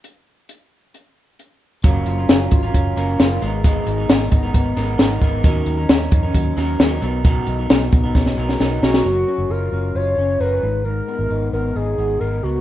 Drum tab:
HH |x---x---x---x---|x-x-x-x-x-x-x-x-|x-x-x-x-x-x-x-x-|x-x-x-x-x-x-x-x-|
SD |----------------|----o-------o---|----o-----o-o---|----o-----o-o---|
BD |----------------|o-----o-o-------|o-----o-o-----o-|o-----o-o-------|

HH |x-x-x-x---------|----------------|----------------|
SD |----o---oo-oo-oo|----------------|----------------|
BD |o-----o-o-------|----------------|----------------|